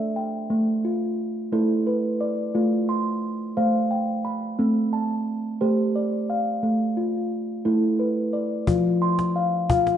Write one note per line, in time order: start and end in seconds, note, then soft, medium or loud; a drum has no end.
0.00 0.37 A3 medium
0.00 0.16 A4 medium
0.00 0.50 D5 medium
0.00 0.84 E5 soft
0.16 0.84 G5 soft
0.50 1.40 A3 medium
0.85 1.87 F4 medium
1.52 2.42 A3 medium
1.52 2.21 E4 medium
1.52 2.55 A4 medium
1.87 2.89 B4 medium
2.21 2.89 D5 medium
2.55 3.44 A3 medium
2.55 3.23 F4 medium
2.89 3.91 C6 medium
3.57 4.46 A3 medium
3.57 4.25 C5 medium
3.57 4.59 F5 medium
3.91 4.93 G5 medium
4.25 4.93 B5 medium
4.59 5.49 A3 medium
4.59 5.27 C4 medium
4.93 5.95 A5 medium
5.61 6.51 A3 medium
5.61 6.29 G4 medium
5.61 6.63 C5 medium
5.96 6.98 D5 soft
6.30 6.98 F5 medium
6.63 7.31 A3 medium
6.97 7.99 F4 medium
7.65 8.55 A3 medium
7.65 8.34 E4 medium
7.65 8.68 A4 medium
7.99 9.02 B4 medium
8.33 9.01 D5 soft
8.67 9.57 F3 medium
8.67 9.36 F4 medium
8.67 cajon bass soft
9.02 9.97 C6 medium
9.19 cajon slap soft
9.36 9.69 F5 medium
9.70 9.97 F4 medium
9.70 9.97 F5 medium
9.70 cajon bass medium
9.87 cajon slap soft